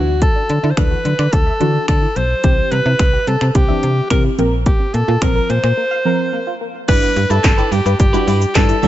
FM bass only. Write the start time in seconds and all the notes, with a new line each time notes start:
Already playing: D2
0.50 D3
0.64 D3
0.77 D2
1.05 D3
1.19 D3
1.33 D2
1.60 D3
1.89 D3
2.16 B1
2.44 C2
2.72 C3
2.86 C3
3.00 C2
3.27 C3
3.41 C3
3.55 C2
3.83 C3
4.11 C3
4.39 A#1
4.94 A#2
5.08 A#2
5.22 A#1
5.50 A#2
5.64 A#2
6.89 G1
7.16 G2
7.30 G2
7.44 G1
7.72 G2
7.86 G2
8.00 G1
8.27 G2
8.55 G2
8.83 D2